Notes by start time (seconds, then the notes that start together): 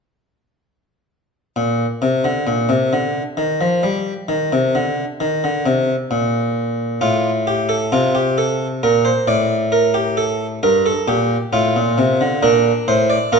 1.56 A#2
2.02 C3
2.24 D3
2.47 A#2
2.69 C3
2.93 D3
3.37 D#3
3.61 F3
3.83 G3
4.29 D#3
4.52 C3
4.75 D3
5.20 D#3
5.44 D3
5.66 C3
6.11 A#2
7.01 A2 F4
7.47 G4
7.69 A4
7.92 C3 F4
8.15 G4
8.38 A4
8.83 A#2 A#4
9.05 C5
9.28 A2 D5
9.72 A#4
9.94 G4
10.17 A4
10.63 G2 A#4
10.86 A4
11.08 A#2 G4
11.53 A2 F4
11.76 A#2
11.98 C3
12.21 D3
12.43 A#2 D4 A#4
12.88 A2 C5
13.10 D5
13.32 A#2 F4 A#4